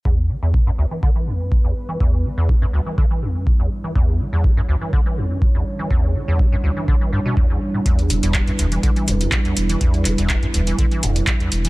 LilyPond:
<<
  \new Staff \with { instrumentName = "Analog synth pad" } { \time 4/4 \key e \dorian \tempo 4 = 123 << { b'1~ | b'1 | cis''1~ | cis''1 |
b'1~ | b'1 | } \\ { <g d' e'>1~ | <g d' e'>1~ | <g d' e'>1~ | <g d' e'>1~ |
<g d' e'>1~ | <g d' e'>1 | } >> }
  \new Staff \with { instrumentName = "Acid bass" } { \clef bass \time 4/4 \key e \dorian e,8 e16 e,16 d16 fis,16 d,16 e16 d16 e16 e,16 fis,16 d16 e,16 r16 e16 | e,8 e16 e,16 d16 fis,16 d,16 e16 d16 e16 e,16 fis,16 d16 e,16 r16 e16 | e,8 e16 e,16 d16 fis,16 d,16 e16 d16 e16 e,16 fis,16 d16 e,16 r16 e16 | e,8 e16 e,16 d16 fis,16 d,16 e16 d16 e16 g,16 b,16 e,16 e,16 r16 a,16 |
e,8 e16 e,16 d16 fis,16 d,16 e16 d16 e16 e,16 fis,16 d16 e,16 r16 e16 | e,8 e16 e,16 d16 fis,16 d,16 e16 d16 e16 e,16 fis,16 d16 e,16 r16 e16 | }
  \new Staff \with { instrumentName = "Sub bass" } { \clef bass \time 4/4 \key e \dorian r1 | r1 | r1 | r1 |
r8 e,,16 e,,8 r16 e,,8 r8 e,,8 r8 e,,8 | r8 e,,16 e,,8 r16 e,,8 r8 e,,8 r8 e,,8 | }
  \new DrumStaff \with { instrumentName = "Drums" } \drummode { \time 4/4 bd4 bd4 bd4 bd4 | bd4 bd4 bd4 bd4 | bd4 bd4 bd4 bd4 | bd4 bd4 bd4 bd4 |
<hh bd>16 hh16 hh16 hh16 <hc hh bd>16 hh16 hh16 hh16 <hh bd>16 hh16 hh16 hh16 <hc hh bd>16 hh16 hh16 hh16 | <hh bd>16 hh16 <hc hh>16 hh16 <hc hh bd>16 hh16 hh16 hh16 <hh bd>16 hh16 hh16 hh16 <hc hh bd>16 hh16 hh16 hh16 | }
>>